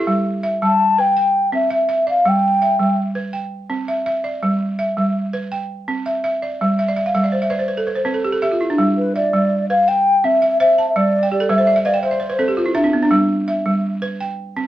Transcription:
0.00 balafon E4
0.07 balafon G3
0.43 balafon E5
0.62 balafon G3, flute A5
0.98 balafon B4, flute G5
1.17 balafon G5
1.52 balafon C4, flute E5
1.70 balafon E5, flute E5
1.89 balafon E5
2.07 balafon D5, flute F5
2.25 balafon G3, flute G5
2.62 balafon E5
2.79 balafon G3
3.15 balafon B4
3.33 balafon G5
3.70 balafon C4
3.88 balafon E5
4.06 balafon E5
4.24 balafon D5
4.43 balafon G3
4.79 balafon E5
4.97 balafon G3
5.33 balafon B4
5.52 balafon G5
5.88 balafon C4
6.06 balafon E5
6.24 balafon E5
6.42 balafon D5
6.61 balafon G3
6.79 balafon E5
6.88 balafon D5
6.96 balafon E5
7.06 balafon F5
7.15 balafon G3 E5
7.24 balafon D5
7.32 balafon C5
7.42 balafon E5
7.50 balafon B4 D5
7.59 balafon C5
7.68 balafon B4
7.77 balafon A4
7.87 balafon B4
7.95 balafon C5
8.05 balafon C4 B4
8.14 balafon A4
8.24 balafon G4
8.32 balafon A4
8.42 balafon G4 E5
8.52 balafon F4
8.61 balafon E4
8.70 balafon D4
8.78 balafon G3
8.97 flute B4
9.16 flute D5, balafon E5
9.33 balafon G3
9.70 balafon B4, flute F5
9.88 balafon G5, flute G5
10.24 balafon C4, flute E5
10.42 balafon E5
10.60 balafon C5 E5, flute E5
10.78 balafon A5
10.89 flute E5
10.96 balafon G3, flute D5
11.23 balafon G5
11.32 balafon G4, flute D5
11.40 balafon A4
11.49 balafon G3 B4, flute E5
11.58 balafon C5
11.67 balafon D5
11.76 balafon E5
11.85 balafon B4 F5, flute D5
11.94 balafon G5
12.03 flute C5, balafon E5
12.11 balafon D5
12.20 balafon C5
12.30 balafon B4
12.39 balafon C4 A4
12.48 balafon G4
12.57 balafon F4
12.66 balafon E4
12.75 balafon D4 E5
12.84 balafon C4
12.93 balafon B3
13.03 balafon D4
13.11 balafon G3
13.48 balafon E5
13.66 balafon G3
14.02 balafon B4
14.20 balafon G5
14.57 balafon C4

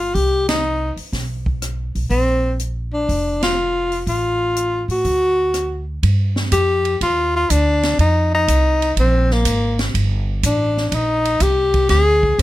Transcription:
Already playing: upright bass G1
0.00 tenor saxophone F4
0.14 upright bass C2, tenor saxophone G4, kick, open hi-hat
0.48 tenor saxophone D#4, snare, ride
0.96 muted upright bass stroke, open hi-hat
1.12 upright bass B1, kick, snare, open hi-hat
1.46 kick
1.62 cross-stick, closed hi-hat
1.95 upright bass B1, open hi-hat
2.10 upright bass A#1, tenor saxophone C4, kick, open hi-hat
2.59 closed hi-hat
2.93 tenor saxophone D4
3.09 upright bass F1, kick, open hi-hat
3.43 tenor saxophone F4, snare, ride
3.92 open hi-hat
4.06 upright bass A1, tenor saxophone F4, kick, open hi-hat
4.56 closed hi-hat
4.88 upright bass A2, tenor saxophone F#4, open hi-hat
5.05 upright bass D2, kick, open hi-hat
5.54 cross-stick, closed hi-hat
6.03 upright bass G2, kick, ride
6.36 snare
6.52 upright bass F2, tenor saxophone G4, kick, hi-hat pedal, ride
6.85 ride
7.01 upright bass D#2, tenor saxophone F4, kick, ride
7.36 tenor saxophone F4
7.50 upright bass D2, tenor saxophone D4, kick, hi-hat pedal, ride
7.83 snare, ride
7.99 upright bass F2, tenor saxophone D#4, kick, ride
8.34 tenor saxophone D#4
8.48 upright bass C2, kick, hi-hat pedal, ride
8.82 ride
8.97 upright bass A#1, tenor saxophone C4, kick, ride
9.31 tenor saxophone A#3, snare
9.45 upright bass G#1, kick, hi-hat pedal, ride
9.79 snare, ride
9.94 upright bass G1, kick, ride
10.43 upright bass A1, tenor saxophone D4, kick, hi-hat pedal, ride
10.77 snare
10.89 upright bass A#1, tenor saxophone D4, kick, ride
10.95 tenor saxophone D#4
11.25 ride
11.40 upright bass C2, tenor saxophone G4, kick, hi-hat pedal, ride
11.74 kick, ride
11.89 upright bass D2, tenor saxophone G#4, kick, snare, ride
12.23 kick
12.38 upright bass F2, kick

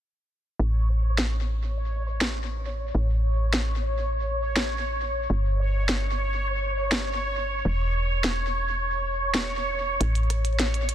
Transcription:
0.59 fm bass A1, synth texture C#5
1.18 snare
2.21 snare
2.95 fm bass A1
3.53 snare
4.56 snare
5.30 fm bass G1
5.89 snare
6.92 snare
7.65 fm bass E1
8.24 snare
9.34 snare
10.01 fm bass A1, closed hi-hat
10.15 closed hi-hat
10.30 cross-stick, closed hi-hat
10.45 closed hi-hat
10.59 snare, closed hi-hat
10.74 closed hi-hat
10.89 closed hi-hat

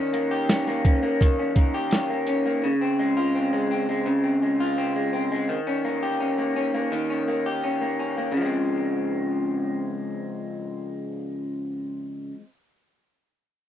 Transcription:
Already playing: clean electric guitar D#3 C#4
0.13 clean electric guitar A#3, closed hi-hat
0.31 clean electric guitar G4
0.49 clean electric guitar C#4, snare, closed hi-hat
0.67 clean electric guitar A#3, snare
0.85 clean electric guitar C#4, kick, closed hi-hat
1.03 clean electric guitar A#3
1.21 clean electric guitar D#3, kick, closed hi-hat
1.39 clean electric guitar C#4
1.56 clean electric guitar A#3, kick, closed hi-hat
1.74 clean electric guitar G4
1.91 clean electric guitar C#4, snare, closed hi-hat
2.10 clean electric guitar A#3
2.27 clean electric guitar C#4, closed hi-hat
2.46 clean electric guitar A#3
2.64 clean electric guitar C#3
2.81 clean electric guitar C4
2.99 clean electric guitar G#3
3.17 clean electric guitar F4
3.35 clean electric guitar C4
3.53 clean electric guitar G#3
3.71 clean electric guitar C4
3.89 clean electric guitar G#3
4.06 clean electric guitar C#3
4.24 clean electric guitar C4
4.42 clean electric guitar G#3
4.60 clean electric guitar F4
4.78 clean electric guitar C4
4.96 clean electric guitar G#3
5.13 clean electric guitar C4
5.31 clean electric guitar G#3
5.49 clean electric guitar D#3
5.67 clean electric guitar C#4
5.85 clean electric guitar A#3
6.03 clean electric guitar G4
6.20 clean electric guitar C#4
6.38 clean electric guitar A#3
6.56 clean electric guitar C#4
6.74 clean electric guitar A#3
6.92 clean electric guitar D#3
7.10 clean electric guitar C#4
7.28 clean electric guitar A#3
7.46 clean electric guitar G4
7.64 clean electric guitar C#4
7.81 clean electric guitar A#3
7.99 clean electric guitar C#4
8.17 clean electric guitar A#3
8.32 clean electric guitar C#3
8.37 clean electric guitar F3
8.41 clean electric guitar G#3 C4

